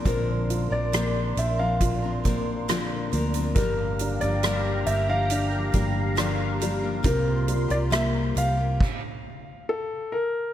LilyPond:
<<
  \new Staff \with { instrumentName = "Analog synth pad" } { \time 4/4 \key bes \lydian \tempo 4 = 68 << { <bes' c'''>1 | <g' bes''>1 | <bes' c'''>2 r2 | } \\ { d''1 | f''2 f''2 | f'2 r2 | } >> }
  \new Staff \with { instrumentName = "Grand piano" } { \time 4/4 \key bes \lydian bes'8. d''8. e''16 f''4.~ f''16 r8 | bes'8. d''8. e''16 f''4.~ f''16 r8 | bes'8. d''16 e''8 f''4. a'8 bes'8 | }
  \new Staff \with { instrumentName = "Steel-string acoustic guitar" } { \time 4/4 \key bes \lydian <bes, d f c' d' bes'>8. <f c' d' bes'>16 <bes, d f c' d' bes'>8 <f c' d' bes'>16 <f c' d' bes'>8 <f c' d' bes'>16 <f c' d' bes'>8 <bes, d f c' d' bes'>8 <f c' d' bes'>16 <f c' d' bes'>16 | <g, d f bes d' bes'>8. <f bes d' bes'>16 <g, d f bes d' bes'>8 <f bes d' bes'>16 <f bes d' bes'>8 <f bes d' bes'>16 <f bes d' bes'>8 <g, d f bes d' bes'>8 <f bes d' bes'>16 <f bes d' bes'>16 | <c g bes f' g'>8. <bes f' g'>16 <c g bes f' g'>8 <g bes f' g'>16 <bes f' g'>16 r2 | }
  \new Staff \with { instrumentName = "Upright piano" } { \time 4/4 \key bes \lydian <f bes f'>8 f'8 bes4 f'8 bes8 f'8 bes8 | g8 d'8 g4 d'8 g8 d'8 g8 | c8 g8 bes4 r2 | }
  \new Staff \with { instrumentName = "Fingered electric bass" } { \clef bass \time 4/4 \key bes \lydian bes,,8. bes,,8. bes,,2 d,8 | g,,8. g,,8. g,,4 g,,4. | c,8. c,8. c,8 r2 | }
  \new DrumStaff \with { instrumentName = "Drums" } \drummode { \time 4/4 <hh bd>8 hh8 <hh ss>8 hh8 <hh bd>8 <hh bd>8 <hh ss>8 hh16 hh16 | <hh bd>8 hh16 hh16 <hh ss>8 hh8 hh8 <hh bd>8 <hh ss>8 hh8 | <hh bd>8 hh16 hh16 <hh ss>8 hh8 <cymc bd>4 r4 | }
>>